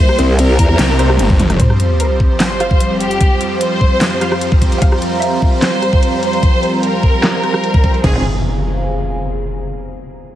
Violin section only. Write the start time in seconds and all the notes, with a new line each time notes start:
Already playing: C5
0.39 A#4
1.60 C5
2.00 A#4
2.40 C5
3.01 G4
3.61 C5
4.82 F5
5.22 E5
5.62 C5
6.23 C5
6.83 A#4
8.04 G#4